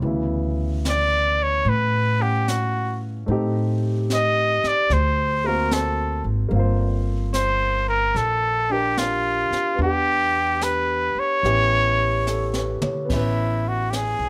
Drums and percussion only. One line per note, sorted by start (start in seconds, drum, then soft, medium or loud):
0.03 brush sweep soft
0.85 snare soft
0.85 hi-hat pedal soft
1.67 brush sweep soft
2.48 snare soft
2.48 hi-hat pedal soft
3.29 brush sweep soft
4.10 snare soft
4.10 hi-hat pedal soft
4.64 snare soft
4.90 brush sweep soft
4.90 snare soft
5.71 snare soft
5.71 hi-hat pedal medium
6.52 brush sweep soft
7.34 snare soft
7.34 hi-hat pedal soft
8.16 brush sweep soft
8.16 snare soft
8.97 snare soft
8.97 hi-hat pedal soft
9.52 snare soft
9.80 brush sweep soft
10.61 snare soft
10.61 hi-hat pedal soft
11.45 brush sweep soft
11.45 snare soft
12.27 snare soft
12.27 hi-hat pedal soft
12.54 snare soft
12.82 mid tom medium
13.10 brush sweep soft
13.10 kick medium
13.10 snare soft
13.10 ride medium
13.93 snare soft
13.93 hi-hat pedal soft